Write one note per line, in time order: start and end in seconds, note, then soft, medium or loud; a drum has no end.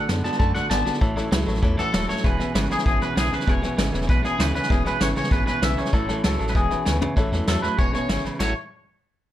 0.07 0.23 F#2 medium
0.07 0.23 D3 medium
0.07 0.23 F#3 medium
0.07 0.24 B3 medium
0.07 0.23 B3 medium
0.07 0.23 F#4 medium
0.07 0.22 A4 medium
0.07 0.18 D5 medium
0.07 0.18 F#5 medium
0.07 0.19 A5 medium
0.07 snare loud
0.07 hi-hat pedal medium
0.23 0.30 F#2 medium
0.23 0.38 D3 medium
0.23 0.38 B3 medium
0.23 0.38 B3 soft
0.23 0.38 F#4 medium
0.23 0.38 A4 medium
0.23 0.33 D5 medium
0.23 0.34 F#5 medium
0.23 0.38 A5 loud
0.23 snare soft
0.33 snare soft
0.38 0.53 F#2 loud
0.38 0.54 D3 medium
0.38 0.53 D3 medium
0.38 0.54 F#3 medium
0.38 0.53 A3 loud
0.38 0.55 B3 medium
0.38 0.53 F#4 medium
0.38 0.52 A4 loud
0.38 0.48 D5 medium
0.38 0.49 F#5 medium
0.38 0.54 A5 loud
0.38 0.49 A5 medium
0.38 kick loud
0.38 snare soft
0.53 0.61 F#2 medium
0.53 0.68 D3 medium
0.53 0.69 A3 medium
0.53 0.69 B3 medium
0.53 0.70 F#4 medium
0.53 0.69 A4 medium
0.53 0.64 D5 medium
0.53 0.69 F#5 loud
0.53 0.64 F#5 medium
0.53 0.65 A5 medium
0.53 snare soft
0.69 0.84 G#1 medium
0.69 0.84 D3 medium
0.69 0.85 F#3 medium
0.69 0.85 B3 medium
0.69 0.84 B3 medium
0.69 0.85 F#4 medium
0.69 0.83 A4 medium
0.69 0.79 D5 loud
0.69 0.80 F#5 medium
0.69 0.80 G#5 loud
0.69 1.79 A5 loud
0.69 snare loud
0.69 hi-hat pedal medium
0.85 0.91 G#1 medium
0.85 0.99 D3 medium
0.85 0.99 B3 medium
0.85 1.01 B3 soft
0.85 1.01 F#4 medium
0.85 1.00 A4 medium
0.85 0.95 D5 medium
0.85 0.95 F#5 medium
0.85 0.95 A5 medium
0.85 snare soft
0.94 snare soft
1.00 1.15 A1 medium
1.00 1.16 A2 medium
1.00 1.15 A2 medium
1.00 1.16 E3 medium
1.00 1.15 E3 loud
1.00 1.16 F#3 medium
1.00 1.16 A3 medium
1.00 1.15 C#4 medium
1.00 1.14 A4 medium
1.00 1.10 C#5 loud
1.00 1.10 E5 medium
1.00 1.10 A5 loud
1.00 kick loud
1.00 snare soft
1.15 1.22 A1 medium
1.15 1.30 A2 medium
1.15 1.30 E3 medium
1.15 1.29 F#3 soft
1.15 1.30 A3 medium
1.15 1.32 C#4 medium
1.15 1.31 A4 medium
1.15 1.25 C#5 loud
1.15 1.26 E5 loud
1.15 1.26 A5 loud
1.15 snare soft
1.31 1.45 C#2 medium
1.31 1.45 A2 medium
1.31 1.47 F#3 medium
1.31 1.46 F#3 medium
1.31 1.47 A3 medium
1.31 1.46 C#4 medium
1.31 1.44 A4 medium
1.31 1.41 C#5 medium
1.31 1.41 E5 medium
1.31 snare loud
1.31 hi-hat pedal medium
1.46 1.61 A1 medium
1.46 1.61 A2 medium
1.46 1.61 F#3 medium
1.46 1.61 F#3 soft
1.46 1.62 A3 medium
1.46 1.62 C#4 medium
1.46 1.62 A4 medium
1.46 1.56 C#5 medium
1.46 1.56 E5 medium
1.46 1.57 A5 loud
1.46 snare soft
1.55 snare soft
1.62 1.76 E2 loud
1.62 1.78 A2 medium
1.62 1.76 A2 medium
1.62 1.78 E3 loud
1.62 1.76 E3 medium
1.62 1.78 F#3 medium
1.62 1.78 A3 loud
1.62 1.77 C#4 loud
1.62 1.76 A4 loud
1.62 1.72 C#5 medium
1.62 1.72 E5 medium
1.62 1.72 A5 loud
1.62 kick loud
1.62 snare soft
1.77 1.84 E2 medium
1.77 1.91 A2 medium
1.77 1.92 E3 medium
1.77 1.91 F#3 soft
1.77 1.92 A3 medium
1.77 1.93 C#4 medium
1.77 1.93 A4 medium
1.77 2.07 A4 medium
1.77 1.87 C#5 medium
1.77 1.87 E5 medium
1.77 1.88 F#5 medium
1.77 snare soft
1.92 2.07 D#1 loud
1.92 2.07 A2 medium
1.92 2.08 F#3 medium
1.92 2.07 F#3 medium
1.92 2.09 A3 medium
1.92 2.07 A4 medium
1.92 2.02 C#5 medium
1.92 2.03 E5 medium
1.92 2.03 A5 loud
1.92 snare loud
1.92 hi-hat pedal medium
2.08 2.15 D#1 medium
2.08 2.22 A2 medium
2.08 2.23 F#3 medium
2.08 2.24 F#3 soft
2.08 2.24 A3 soft
2.08 2.23 C#4 soft
2.08 2.24 A4 medium
2.08 2.18 C#5 medium
2.08 2.25 C#5 medium
2.08 2.18 E5 medium
2.08 2.18 A5 medium
2.08 snare soft
2.17 snare soft
2.23 2.38 E1 loud
2.23 2.37 E2 medium
2.23 2.38 B2 medium
2.23 2.39 E3 medium
2.23 2.39 G#3 medium
2.23 2.40 B3 medium
2.23 2.38 C#4 medium
2.23 2.37 G#4 medium
2.23 2.33 B4 medium
2.23 2.71 B4 medium
2.23 2.33 E5 medium
2.23 2.34 G#5 loud
2.23 kick loud
2.23 snare soft
2.38 2.45 E1 medium
2.38 2.53 E2 medium
2.38 2.53 B2 medium
2.38 2.53 B3 soft
2.38 2.54 C#4 soft
2.38 2.54 G#4 medium
2.38 2.48 B4 medium
2.38 2.49 E5 medium
2.38 2.49 G#5 loud
2.38 snare soft
2.54 2.68 G#1 medium
2.54 2.68 E2 medium
2.54 2.69 C#3 medium
2.54 2.70 G#3 medium
2.54 2.70 B3 medium
2.54 2.70 C#4 medium
2.54 2.68 G#4 medium
2.54 2.64 E5 medium
2.54 2.64 G#5 medium
2.54 snare loud
2.54 hi-hat pedal medium
2.69 2.77 G#1 medium
2.69 2.84 E2 medium
2.69 2.84 C#3 medium
2.69 2.83 B3 soft
2.69 2.84 C#4 medium
2.69 2.84 G#4 medium
2.69 2.77 G#4 medium
2.69 2.79 B4 medium
2.69 2.80 E5 medium
2.69 2.80 G#5 medium
2.69 snare soft
2.78 snare soft
2.84 3.00 G#1 medium
2.84 2.99 E2 medium
2.84 3.00 B2 medium
2.84 3.00 E3 medium
2.84 3.00 G#3 medium
2.84 3.00 B3 medium
2.84 3.00 C#4 loud
2.84 2.99 G#4 medium
2.84 3.02 G#4 medium
2.84 2.95 B4 medium
2.84 2.95 E5 medium
2.84 2.95 G#5 medium
2.84 kick loud
2.84 snare soft
3.00 3.08 G#1 medium
3.00 3.14 E2 medium
3.00 3.15 B2 medium
3.00 3.15 B3 soft
3.00 3.16 C#4 medium
3.00 3.16 G#4 medium
3.00 3.10 B4 medium
3.00 3.17 B4 medium
3.00 3.11 G#5 medium
3.00 snare soft
3.15 3.30 B1 medium
3.15 3.30 E2 medium
3.15 3.30 C#3 medium
3.15 3.31 G#3 medium
3.15 3.32 B3 medium
3.15 3.34 G#4 medium
3.15 3.26 B4 loud
3.15 3.26 E5 medium
3.15 3.26 G#5 loud
3.15 snare loud
3.15 hi-hat pedal medium
3.31 3.38 B1 medium
3.31 3.45 E2 medium
3.31 3.45 C#3 medium
3.31 3.46 B3 soft
3.31 3.46 C#4 soft
3.31 3.47 G#4 medium
3.31 3.41 B4 medium
3.31 3.49 B4 medium
3.31 3.42 G#5 medium
3.31 snare soft
3.41 snare soft
3.46 3.61 E1 medium
3.46 3.61 E2 medium
3.46 3.61 B2 medium
3.46 3.62 E3 medium
3.46 3.62 G#3 medium
3.46 3.63 B3 medium
3.46 3.62 C#4 medium
3.46 3.61 G#4 medium
3.46 3.56 B4 loud
3.46 4.09 C#5 loud
3.46 3.57 E5 medium
3.46 3.57 G#5 loud
3.46 kick loud
3.46 snare soft
3.62 3.69 E1 medium
3.62 3.75 E2 medium
3.62 3.76 B2 loud
3.62 3.77 B3 soft
3.62 3.78 C#4 medium
3.62 3.78 G#4 medium
3.62 3.72 B4 loud
3.62 3.72 E5 medium
3.62 3.72 G#5 loud
3.62 snare soft
3.77 3.92 G#1 medium
3.77 3.91 E2 medium
3.77 3.91 C#3 loud
3.77 3.93 G#3 medium
3.77 3.94 B3 medium
3.77 3.92 C#4 medium
3.77 3.91 G#4 medium
3.77 3.87 E5 medium
3.77 snare loud
3.77 hi-hat pedal medium
3.92 4.07 E1 medium
3.92 4.06 E2 medium
3.92 4.07 C#3 medium
3.92 4.07 B3 medium
3.92 4.08 C#4 medium
3.92 4.08 G#4 medium
3.92 4.02 B4 medium
3.92 4.03 E5 medium
3.92 4.03 G#5 loud
3.92 snare soft
4.02 snare soft
4.07 4.23 B1 medium
4.07 4.21 E2 medium
4.07 4.22 B2 medium
4.07 4.24 E3 medium
4.07 4.24 G#3 medium
4.07 4.24 B3 medium
4.07 4.23 C#4 medium
4.07 4.22 G#4 medium
4.07 4.18 B4 medium
4.07 4.25 B4 medium
4.07 4.19 G#5 medium
4.07 kick loud
4.07 snare soft
4.23 4.30 B1 medium
4.23 4.36 E2 medium
4.23 4.37 B2 medium
4.23 4.37 B3 medium
4.23 4.39 C#4 medium
4.23 4.39 G#4 medium
4.23 4.40 G#4 medium
4.23 4.33 B4 medium
4.23 4.33 E5 medium
4.23 4.34 G#5 medium
4.23 snare soft
4.38 4.53 D2 medium
4.38 4.52 E2 medium
4.38 4.53 C#3 medium
4.38 4.54 G#3 medium
4.38 4.54 B3 medium
4.38 4.53 C#4 medium
4.38 4.51 G#4 medium
4.38 4.48 B4 loud
4.38 4.54 B4 medium
4.38 4.49 E5 medium
4.38 4.49 G#5 loud
4.38 snare loud
4.38 hi-hat pedal medium
4.53 4.60 D2 medium
4.53 4.68 E2 medium
4.53 4.69 C#3 medium
4.53 4.69 B3 soft
4.53 4.69 C#4 soft
4.53 4.69 G#4 medium
4.53 4.64 B4 medium
4.53 4.71 B4 medium
4.53 4.64 E5 medium
4.53 4.65 G#5 medium
4.53 snare soft
4.63 snare soft
4.69 4.84 E1 loud
4.69 4.83 E2 medium
4.69 4.84 B2 loud
4.69 4.85 E3 medium
4.69 4.86 G#3 medium
4.69 4.86 B3 medium
4.69 4.85 C#4 medium
4.69 4.87 G#4 medium
4.69 4.83 G#4 medium
4.69 4.79 B4 loud
4.69 4.80 E5 medium
4.69 4.80 G#5 loud
4.69 kick loud
4.69 snare soft
4.84 4.91 E1 medium
4.84 4.98 E2 medium
4.84 4.99 B2 medium
4.84 5.00 B3 soft
4.84 5.01 C#4 soft
4.84 5.00 G#4 medium
4.84 4.95 B4 medium
4.84 5.02 B4 medium
4.84 4.95 E5 medium
4.84 4.95 G#5 loud
4.84 snare soft
4.99 5.15 G#1 medium
4.99 5.14 E2 medium
4.99 5.14 C#3 loud
4.99 5.16 G#3 medium
4.99 5.16 B3 medium
4.99 5.16 C#4 medium
4.99 5.15 G#4 medium
4.99 5.07 C#5 loud
4.99 5.11 E5 medium
4.99 5.11 G#5 medium
4.99 snare loud
4.99 hi-hat pedal medium
5.15 5.22 G#1 medium
5.15 5.29 E2 medium
5.15 5.30 C#3 medium
5.15 5.32 B3 soft
5.15 5.32 C#4 medium
5.15 5.32 G#4 medium
5.15 5.25 B4 medium
5.15 5.31 C#5 medium
5.15 5.26 E5 medium
5.15 5.26 G#5 medium
5.15 snare soft
5.24 snare soft
5.30 5.45 G#1 loud
5.30 5.45 E2 medium
5.30 5.45 B2 medium
5.30 5.47 E3 medium
5.30 5.47 G#3 medium
5.30 5.47 B3 medium
5.30 5.46 C#4 medium
5.30 5.41 B4 medium
5.30 5.46 B4 medium
5.30 5.41 E5 medium
5.30 5.42 G#5 medium
5.30 kick loud
5.30 snare soft
5.34 5.45 G#4 loud
5.46 5.53 G#1 medium
5.46 5.60 E2 medium
5.46 5.61 B2 medium
5.46 5.61 B3 medium
5.46 5.62 C#4 medium
5.46 5.62 G#4 medium
5.46 5.56 B4 medium
5.46 5.63 B4 medium
5.46 5.57 E5 medium
5.46 5.57 G#5 medium
5.46 snare soft
5.61 5.76 B1 loud
5.61 5.76 E2 medium
5.61 5.76 C#3 medium
5.61 5.77 G#3 medium
5.61 5.78 B3 medium
5.61 5.77 C#4 medium
5.61 5.76 G#4 medium
5.61 5.72 B4 medium
5.61 5.72 E5 medium
5.61 5.78 E5 medium
5.61 5.72 G#5 loud
5.61 snare loud
5.61 hi-hat pedal medium
5.77 5.84 B1 medium
5.77 5.92 E2 medium
5.77 5.92 C#3 medium
5.77 5.93 B3 soft
5.77 5.92 C#4 medium
5.77 5.93 G#4 medium
5.77 5.87 B4 medium
5.77 5.94 C#5 medium
5.77 5.87 E5 medium
5.77 5.88 G#5 medium
5.77 snare soft
5.85 snare soft
5.92 6.07 A1 medium
5.92 6.08 A2 medium
5.92 6.07 A2 medium
5.92 6.09 E3 medium
5.92 6.07 E3 medium
5.92 6.08 F#3 medium
5.92 6.09 A3 medium
5.92 6.08 C#4 medium
5.92 6.25 A4 medium
5.92 6.07 A4 medium
5.92 6.02 C#5 loud
5.92 6.03 E5 loud
5.92 6.03 A5 loud
5.92 kick loud
5.92 snare soft
6.08 6.15 A1 medium
6.08 6.22 A2 medium
6.08 6.23 E3 loud
6.08 6.22 F#3 soft
6.08 6.23 A3 soft
6.08 6.24 C#4 medium
6.08 6.24 A4 medium
6.08 6.18 C#5 medium
6.08 6.18 E5 medium
6.08 6.18 A5 loud
6.08 snare soft
6.23 6.38 C#2 medium
6.23 6.38 A2 medium
6.23 6.39 F#3 medium
6.23 6.38 F#3 loud
6.23 6.40 A3 medium
6.23 6.39 C#4 medium
6.23 6.37 A4 medium
6.23 6.47 A4 medium
6.23 6.33 C#5 medium
6.23 6.33 E5 medium
6.23 6.34 A5 medium
6.23 snare loud
6.23 hi-hat pedal medium
6.39 6.54 A1 medium
6.39 6.53 A2 medium
6.39 6.53 F#3 medium
6.39 6.53 F#3 soft
6.39 6.54 A3 medium
6.39 6.54 C#4 medium
6.39 6.54 A4 medium
6.39 6.49 C#5 medium
6.39 6.49 E5 medium
6.39 6.49 A5 medium
6.39 snare soft
6.47 6.56 B4 medium
6.47 snare soft
6.53 6.69 E1 medium
6.53 6.69 E2 medium
6.53 6.69 B2 medium
6.53 6.69 E3 medium
6.53 6.70 G#3 medium
6.53 6.70 B3 medium
6.53 6.70 C#4 medium
6.53 6.68 G#4 loud
6.53 6.84 G#4 medium
6.53 6.64 B4 medium
6.53 6.64 E5 medium
6.53 6.65 G#5 medium
6.53 kick loud
6.53 snare soft
6.69 6.77 E1 medium
6.69 6.84 E2 medium
6.69 6.84 B2 medium
6.69 6.85 B3 soft
6.69 6.85 C#4 medium
6.69 6.85 G#4 medium
6.69 6.80 B4 medium
6.69 6.80 E5 medium
6.69 6.80 G#5 medium
6.69 snare soft
6.85 7.00 D2 loud
6.85 6.99 E2 medium
6.85 7.00 C#3 loud
6.85 7.01 G#3 medium
6.85 7.01 B3 medium
6.85 7.01 C#4 medium
6.85 7.00 G#4 medium
6.85 6.95 B4 loud
6.85 6.96 E5 medium
6.85 6.96 G#5 loud
6.85 snare medium
6.85 hi-hat pedal loud
7.01 7.08 D2 medium
7.01 7.15 E2 medium
7.01 7.15 C#3 medium
7.01 7.18 B3 soft
7.01 7.17 C#4 medium
7.01 7.17 G#4 medium
7.01 7.11 B4 medium
7.01 7.11 E5 medium
7.01 7.11 G#5 loud
7.01 floor tom medium
7.16 7.26 A1 medium
7.16 7.30 A2 medium
7.16 7.32 A2 medium
7.16 7.31 E3 loud
7.16 7.32 E3 medium
7.16 7.32 F#3 medium
7.16 7.33 A3 medium
7.16 7.32 C#4 medium
7.16 7.31 A4 medium
7.16 7.26 C#5 loud
7.16 7.26 E5 loud
7.16 7.26 A5 loud
7.16 kick loud
7.16 snare soft
7.32 7.42 E2 medium
7.32 7.46 A2 medium
7.32 7.46 E3 medium
7.32 7.46 F#3 soft
7.32 7.48 A3 medium
7.32 7.48 C#4 medium
7.32 7.48 A4 medium
7.32 7.41 C#5 medium
7.32 7.41 E5 medium
7.32 7.42 A5 medium
7.32 snare soft
7.47 7.57 E2 medium
7.47 7.62 A2 medium
7.47 7.63 F#3 medium
7.47 7.62 F#3 loud
7.47 7.64 A3 medium
7.47 7.63 C#4 medium
7.47 7.62 A4 medium
7.47 7.56 C#5 loud
7.47 7.57 E5 medium
7.47 7.57 A5 loud
7.47 snare loud
7.47 hi-hat pedal medium
7.62 7.69 E2 medium
7.62 7.77 A2 medium
7.62 7.77 F#3 medium
7.62 7.78 F#3 soft
7.62 7.79 A3 soft
7.62 7.78 C#4 medium
7.62 7.78 A4 medium
7.62 7.79 B4 medium
7.62 7.72 E5 medium
7.62 7.72 A5 medium
7.62 snare soft
7.78 7.88 E1 loud
7.78 7.92 E2 medium
7.78 7.92 B2 medium
7.78 7.93 E3 medium
7.78 7.94 G#3 medium
7.78 7.94 B3 medium
7.78 7.93 C#4 medium
7.78 7.91 G#4 medium
7.78 7.87 B4 medium
7.78 7.94 C#5 loud
7.78 7.87 E5 medium
7.78 7.88 G#5 medium
7.78 kick loud
7.78 snare soft
7.93 8.00 E1 medium
7.93 8.07 E2 medium
7.93 8.07 B2 medium
7.93 8.08 B3 soft
7.93 8.09 C#4 medium
7.93 8.09 G#4 medium
7.93 8.03 B4 medium
7.93 8.23 C#5 medium
7.93 8.03 E5 medium
7.93 8.03 G#5 medium
7.93 snare soft
8.08 8.19 G#1 loud
8.08 8.23 C#3 medium
8.08 8.24 G#3 medium
8.08 8.25 B3 medium
8.08 8.24 C#4 medium
8.08 8.22 G#4 medium
8.08 8.18 B4 medium
8.08 8.18 E5 medium
8.08 8.19 G#5 loud
8.08 snare loud
8.08 hi-hat pedal medium
8.23 8.30 G#1 medium
8.23 8.38 E2 medium
8.23 8.38 C#3 medium
8.23 8.40 B3 soft
8.23 8.39 C#4 soft
8.23 8.39 G#4 medium
8.23 8.34 B4 medium
8.23 8.34 E5 medium
8.23 8.34 B5 medium
8.23 snare soft
8.38 8.54 A1 medium
8.38 8.51 A2 medium
8.38 8.52 E3 medium
8.38 8.52 F#3 medium
8.38 8.52 A3 medium
8.38 8.53 C#4 medium
8.38 8.52 E4 medium
8.38 8.53 F#4 loud
8.38 8.53 F#4 medium
8.38 8.54 C#5 medium
8.38 8.53 C#5 loud
8.38 8.54 E5 medium
8.38 8.54 A5 medium
8.38 snare loud
8.38 splash medium